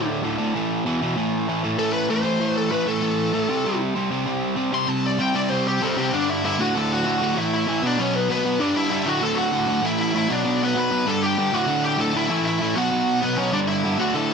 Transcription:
Already playing: D2 A2 D3
0.23 D2 A2 D3
0.38 D2 A2 D3
0.55 A2 E3 A3
0.85 E2 B2 E3
1.02 E2 B2 E3
1.17 A2 E3 A3
1.48 A2 E3 A3
1.64 A2 E3 A3
1.78 A2 E3 A3 A4
1.93 B4
2.10 A2 E3 A3 C5
2.24 A2 E3 A3
2.40 A2 E3 A3
2.57 A4
2.71 A2 E3 A3 B4
2.87 A2 E3 A3 A4
3.02 A2 E3 A3
3.33 A2 E3 A3
3.49 C3 G3 C4
3.65 C3 G3 C4
3.95 C3 G3 C4
4.11 C3 G3 C4
4.26 C3 G3 C4
4.56 C3 G3 C4
4.72 C3 G3 C4 C6
4.87 C3 G3 C4 A5
5.06 D5
5.19 C3 G3 C4 G5
5.35 C3 G3 C4 D5
5.50 C3 G3 C4 C5
5.68 G4
5.81 C3 G3 C4 A4 C5
5.97 C3 G3 C4 G4 C5
6.13 G2 D3 G3 D4 D5
6.30 E4 E5
6.44 G2 D3 G3 E4 E5
6.59 D2 A2 D3 F#4 F#5
6.75 D2 A2 D3 A4 A5
6.93 F#4 F#5
7.06 D2 A2 D3
7.22 D2 A2 D3
7.37 A2 E3 A3 E4 E5
7.54 E4 E5
7.67 A2 E3 A3
7.82 B2 F#3 B3 D4
7.87 D5
7.98 B2 F#3 B3 C#4 C#5
8.13 B3 B4
8.29 B2 F#3 B3 B4
8.45 B2 F#3 B3
8.60 G2 D3 G3 D4 D5
8.76 E4 E5
8.90 G2 D3 G3 E4 E5
9.06 D2 A2 D3 F#4 F#5
9.22 D2 A2 D3 A4 A5
9.35 F#4 F#5
9.53 D2 A2 D3
9.67 D2 A2 D3
9.82 A2 E3 A3 E4
9.86 E5
9.99 E4 E5
10.14 A2 E3 A3 E4 E5
10.29 B2 F#3 B3 D4 D5
10.44 B2 F#3 B3
10.63 B3 B4
10.76 B2 F#3 B3 B4
10.80 B5
10.91 B2 F#3 B3
11.07 G2 D3 G3 A4 A5
11.23 G4 G5
11.38 G2 D3 G3
11.53 D2 A2 D3 F#4 F#5
11.67 D2 A2 D3
11.84 G4 G5
11.98 D2 A2 D3 A4 A5
12.14 D2 A2 D3 E4
12.18 E5
12.29 A2 E3 A3
12.45 E4 E5
12.60 A2 E3 A3
12.75 B2 F#3 B3 F#4 F#5
12.91 B2 F#3 B3
13.21 B2 F#3 B3 B4
13.36 B2 F#3 B3 C#4 C#5
13.53 G2 D3 G3 D4 D5
13.68 E4 E5
13.84 G2 D3 G3
13.99 D2 A2 D3 F#4 F#5
14.15 D2 A2 D3 A4 A5

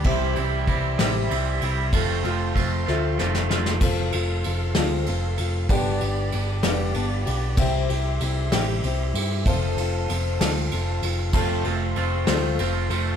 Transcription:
0.04 C2 C3 E3 G3 C4 E4 G4 C5 E5 C6, kick, crash
0.36 C2 G3 E4 G4, ride
0.40 C4
0.67 C2 E3 G3 C4 E4, kick, ride
0.71 G4
0.99 A1 G3 C4 E4 G4 C5 E5, snare, ride
1.03 C3
1.29 C2 E3 G3 C4 E4, ride
1.33 G4
1.61 C2 G3 C4 E4 G4, ride
1.92 F1 F2 C3 F3 A3 C4 F4 A4 C5 F5, kick, ride
2.24 F1 F3 A3 C4 F4 A4, ride
2.55 F1 F3 A3 C4 F4, kick, ride
2.59 A4
2.87 D2 F3 A3 C4 F4 A4 C5 E5, snare
3.18 F1 F3 A3 C4 F4 A4, snare
3.35 snare
3.49 F1 F3 A3 C4 F4 A4, snare
3.66 snare
3.80 F1 F3 C4 F4 A4 C5 F5 C6, kick, crash
4.11 F1 C4 F4 A4, ride
4.43 F1 F3 C4 F4 A4, ride
4.75 D2 F3 C4 F4 A4 C5 F5, snare, ride
5.06 F1 F3 C4 F4 A4, ride
5.38 F1 C4 F4 A4, ride
5.69 G1 G2 D3 G3 B3 D4 G4 B4 D5 G5 B5, kick, ride
6.01 G1 G3 B3 D4 G4, ride
6.32 G1 G3 B3 D4 G4, ride
6.63 F1 G2 D3 G3 B3 D4 G4 B4 D5 F5, snare, ride
6.94 G1 G3 B3 D4 G4 A5, ride
7.26 B1 G3 B3 D4 G4 F5, ride
7.57 C2 C3 G3 C4 E4 G4 C5 E5 G5 C6, kick, crash
7.89 C2 C4 E4 G4, ride
8.20 C2 G3 C4 E4 G4, ride
8.52 A1 C3 G3 C4 E4 G4 C5 E5 G5, snare, ride
8.84 C2 G3 C4 E4 G4, ride
9.14 G2 E4 G4, ride
9.19 C4
9.46 F1 F3 C4 F4 A4 C5 F5 A5, kick, ride
9.77 F1 F4 A4, ride
9.81 C4
10.09 F1 F3 C4 F4 A4, ride
10.38 D2 F4 A4 C5 F5 A5, snare, ride
10.43 F3 C4
10.71 F1 F3 C4 F4 A4, ride
11.02 F1 C4 F4 A4, ride
11.33 F1 F2 C3 F3 A3 C4 F4 A4 C5 F5 A5, kick, crash
11.64 F1 F3 A3 F4 A4, ride
11.69 C4
11.96 F1 F3 A3 C4 F4 A4, ride
12.27 D2 F3 A3 C4 F4 A4 C5 F5 C6, snare, ride
12.59 F1 F3 A3 C4 F4 A4, ride
12.90 F1 F3 A3 C4 F4 A4, ride

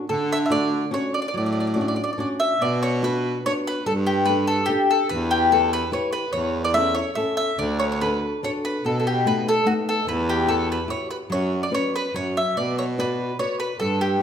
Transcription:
0.09 D3 A4
0.32 E5
0.46 E5
0.50 A3 D4 F#4 D5
0.91 C#4 D4 F#4 C#5
1.14 D5
1.22 D5
1.28 D5
1.34 A2 F#3 D5
1.46 D5
1.52 D5
1.60 D5
1.67 D5
1.74 C#4 D4 F#4 D5
1.81 D5
1.88 D5
1.96 D5
2.04 D5
2.13 D5
2.18 C#4 D4 F#4 D5
2.40 E5
2.61 B2 D5
2.83 C#5
3.02 B3 D4 F#4 B4
3.46 B3 D4 F#4 C#5
3.67 B4
3.86 G2 G3 A4
4.06 G4
4.25 D4 G4 A4 B4
4.47 A4
4.66 D4 G4
4.70 A4
4.91 A4
5.09 E2 E3 B4
5.31 G4
5.52 E4 G4 A4 B4
5.73 B4
5.92 E4 G4 B4 C#5
6.13 B4
6.33 E2 E3 C#5
6.64 D5
6.74 C#4 E4 A4 E5
6.95 C#5
7.15 C#4 E4 A4 E5
7.37 E5
7.58 D2 D3 D5
7.79 C#5
7.92 C#5
8.01 D4 F#4 A4 B4
8.43 D4 F#4 A4 C#5
8.65 B4
8.83 B2 A4
9.00 A4
9.07 G4
9.25 A3 B3 D#4 B4
9.49 A4
9.65 A3 B3 D#4 F#4
9.89 A4
10.06 E2 E3 B4
10.29 G4
10.47 E4 F#4 G4 A4
10.72 B4
10.88 E4 F#4 G4 C#5
11.11 B4
11.30 F#2 F#3 C#5
11.63 D5
11.71 C#4 F#4 B4 C#5
11.96 B4
12.14 F#2 F#3 C#5
12.37 E5
12.56 B2 B3 D5
12.79 C#5
12.98 F#4 B4 D5
13.39 F#4 B4 C#5 D5
13.60 B4
13.79 G2 G3 A4
14.01 G4

